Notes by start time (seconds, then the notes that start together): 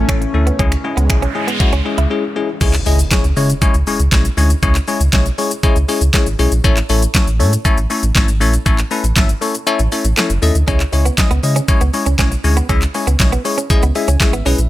Already playing: E3 A3 C#4
0.09 A1 A3 C#4 E4 A4, finger snap, kick, closed hi-hat
0.21 muted clean electric guitar stroke, closed hi-hat
0.34 D2 A3 C#4 E4 A4
0.47 B3, closed hi-hat
0.59 C#2 G#3 C#4 E4 G#4, kick, closed hi-hat, noise sweep
0.72 finger snap, closed hi-hat
0.84 G#3 C#4 E4 G#4, muted clean electric guitar stroke
0.97 C#2 B3, closed hi-hat
1.09 B1 G#3 C#4 E4 G#4, finger snap, kick, closed hi-hat
1.22 C#4, closed hi-hat
1.35 G#3 C#4 E4 G#4, muted clean electric guitar stroke
1.48 B3, closed hi-hat
1.60 G#3 C#4 E4 F#4, kick, closed hi-hat
1.73 C#2 C#4, closed hi-hat
1.85 G#3 C#4 E4 G#4, muted clean electric guitar stroke
1.98 C#2 E4, closed hi-hat
2.10 G#3 C#4 E4 G#4
2.36 G#3 C#4 E4 G#4
2.61 C#2 G#3 C#4 E4 G#4 C#5, kick, closed hi-hat, crash, impact, shaker
2.73 clap, closed hi-hat, shaker
2.86 C#2 G#3 C#4 E4 G#4 D#5, open hi-hat, shaker
2.99 closed hi-hat, shaker
3.11 G#3 C#4 E4 G#4 C#5, kick, snare, clap, closed hi-hat, shaker
3.24 C#2, closed hi-hat, shaker
3.37 C#3 G#3 C#4 E4 G#4 C#5, open hi-hat, shaker
3.50 closed hi-hat, shaker
3.62 G#3 C#4 E4 G#4 C#5, kick, closed hi-hat, shaker
3.74 C#2, closed hi-hat, shaker
3.87 G#3 C#4 E4 G#4 C#5, open hi-hat, shaker
4.00 C#2, closed hi-hat, shaker
4.12 B1 G#3 C#4 E4 G#4 C#5, kick, snare, clap, closed hi-hat, shaker
4.25 closed hi-hat, shaker
4.37 D2 G#3 C#4 E4 G#4 C#5, open hi-hat, shaker
4.50 closed hi-hat, shaker
4.62 C#2 G#3 C#4 E4 G#4 C#5, kick, closed hi-hat, shaker
4.75 clap, closed hi-hat, shaker
4.88 G#3 C#4 E4 G#4 C#5, open hi-hat, shaker
5.00 C#2, closed hi-hat, shaker
5.13 B1 G#3 C#4 E4 G#4 C#5, kick, snare, clap, closed hi-hat, shaker
5.26 closed hi-hat, shaker
5.38 G#3 C#4 E4 G#4 C#5, open hi-hat, shaker
5.51 closed hi-hat, shaker
5.63 G#3 C#4 E4 G#4 C#5, kick, closed hi-hat, shaker
5.76 C#2, closed hi-hat, shaker
5.88 G#3 C#4 E4 G#4 C#5, open hi-hat, shaker
6.01 C#2, closed hi-hat, shaker
6.14 G#3 C#4 E4 G#4 C#5, kick, snare, clap, closed hi-hat, shaker
6.27 G#1, closed hi-hat, shaker
6.39 B1 G#3 C#4 E4 G#4 C#5, open hi-hat, shaker
6.52 A#1, closed hi-hat, shaker
6.64 A1 A3 C#4 E4 A4 C#5, kick, closed hi-hat, shaker
6.77 clap, closed hi-hat, shaker
6.89 A1 A3 C#4 E4 A4 C#5, open hi-hat, shaker
7.02 closed hi-hat, shaker
7.14 A3 C#4 E4 A4 C#5, kick, snare, clap, closed hi-hat, shaker
7.27 A1, closed hi-hat, shaker
7.40 A2 A3 C#4 E4 A4 C#5, open hi-hat, shaker
7.53 closed hi-hat, shaker
7.65 A3 C#4 E4 A4 C#5, kick, closed hi-hat, shaker
7.78 A1, closed hi-hat, shaker
7.90 A3 C#4 E4 A4 C#5, open hi-hat, shaker
8.03 A1, closed hi-hat, shaker
8.15 G#1 A3 C#4 E4 A4 C#5, kick, snare, clap, closed hi-hat, shaker
8.28 closed hi-hat, shaker
8.41 A#1 A3 C#4 E4 A4 C#5, open hi-hat, shaker
8.54 closed hi-hat, shaker
8.66 A1 A3 C#4 E4 A4 C#5, kick, closed hi-hat, shaker
8.78 clap, closed hi-hat, shaker
8.91 A3 C#4 E4 A4 B4, open hi-hat, shaker
9.04 A1, closed hi-hat, shaker
9.16 G#1 A3 C#4 E4 A4 E5, kick, snare, clap, closed hi-hat, shaker
9.29 closed hi-hat, shaker
9.41 A3 C#4 E4 A4 C#5, open hi-hat, shaker
9.55 closed hi-hat, shaker
9.67 A3 C#4 E4 A4 C#5, closed hi-hat, shaker
9.79 A1, closed hi-hat, shaker
9.92 A3 C#4 E4 A4 C#5, open hi-hat, shaker
10.05 A1, closed hi-hat, shaker
10.17 A3 C#4 E4 A4 C#5, snare, clap, closed hi-hat, shaker
10.30 F#1, closed hi-hat, shaker
10.42 D#2 A3 C#4 E4 A4 D#5, open hi-hat, shaker
10.55 D2, closed hi-hat, shaker
10.67 C#2 G#3 C#4 E4 G#4 C#5, kick, closed hi-hat, shaker
10.80 clap, closed hi-hat, shaker
10.93 C#2 G#3 C#4 E4 G#4 C#5, muted clean electric guitar stroke, open hi-hat, shaker
11.06 B3, closed hi-hat, shaker
11.18 G#3 C#4 E4 G#4 D#5, kick, snare, clap, closed hi-hat, shaker
11.31 C#2 B3, closed hi-hat, shaker
11.43 C#3 G#3 C#4 E4 G#4 D#5, muted clean electric guitar stroke, open hi-hat, shaker
11.56 C#4, closed hi-hat, shaker
11.68 G#3 C#4 E4 G#4 C#5, kick, closed hi-hat, shaker
11.81 C#2 B3, closed hi-hat, shaker
11.94 G#3 C#4 E4 G#4 C#5, muted clean electric guitar stroke, open hi-hat, shaker
12.06 C#2 C#4, closed hi-hat, shaker
12.19 B1 G#3 C#4 E4 G#4 C#5, kick, snare, clap, closed hi-hat, shaker
12.32 muted clean electric guitar stroke, closed hi-hat, shaker
12.44 D2 G#3 C#4 E4 G#4 C#5, open hi-hat, shaker
12.57 B3, closed hi-hat, shaker
12.69 C#2 G#3 C#4 E4 G#4 E5, kick, closed hi-hat, shaker
12.82 clap, closed hi-hat, shaker
12.94 G#3 C#4 E4 G#4 C#5, muted clean electric guitar stroke, open hi-hat, shaker
13.07 C#2 B3, closed hi-hat, shaker
13.20 B1 G#3 C#4 E4 G#4 C#5, kick, snare, clap, closed hi-hat, shaker
13.32 B3, closed hi-hat, shaker
13.45 G#3 C#4 E4 G#4 C#5, muted clean electric guitar stroke, open hi-hat, shaker
13.58 C#4, closed hi-hat, shaker
13.70 G#3 C#4 E4 G#4 D#5, kick, closed hi-hat, shaker
13.83 C#2 B3, closed hi-hat, shaker
13.95 G#3 C#4 E4 G#4 E5 G#5, muted clean electric guitar stroke, open hi-hat, shaker
14.08 C#2 C#4, closed hi-hat, shaker
14.20 G#3 C#4 E4 G#4 C#5 E5, muted clean electric guitar stroke, kick, snare, clap, closed hi-hat, shaker
14.33 G#1 B3, closed hi-hat, shaker
14.46 B1 G#3 C#4 E4 G#4 B4, open hi-hat, shaker
14.58 A#1, closed hi-hat, shaker